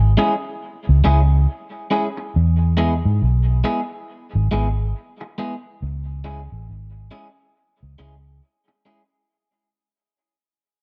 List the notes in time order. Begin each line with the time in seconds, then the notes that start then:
Already playing: G#1
0.17 G#3 C#4 E4 G#4
0.89 C#2
1.04 C#2 G#3 C#4 E4 G#4
1.91 G#3 C#4 E4 G#4
2.17 muted clean electric guitar stroke
2.36 E2
2.77 G#3 B3 E4 G#4
3.05 G#2
3.22 B1
3.64 G#3 B3 E4 G#4
4.35 G#1
4.51 G#1 G#3 B3 E4 G#4
5.21 muted clean electric guitar stroke
5.38 G#3 B3 E4 G#4
5.82 C#2
6.24 G#3 C#4 E4 G#4
6.52 A1
6.70 G#1
7.11 G#3 C#4 E4 G#4
7.83 C#2
7.98 C#2 G#3 C#4 E4 G#4
8.68 muted clean electric guitar stroke
8.85 G#3 C#4 E4 G#4